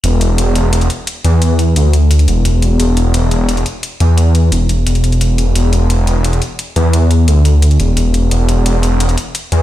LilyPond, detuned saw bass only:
\new Staff \with { instrumentName = "Detuned saw bass" } { \clef bass \time 4/4 \key d \dorian \tempo 4 = 174 e,,2~ e,,8 r4 e,8~ | e,4 d,4. e,,4. | e,,2~ e,,8 r4 e,8~ | e,4 e,,8 e,,8 e,,2 |
e,,2~ e,,8 r4 e,8~ | e,4 d,4. e,,4. | e,,2~ e,,8 r4 e,8 | }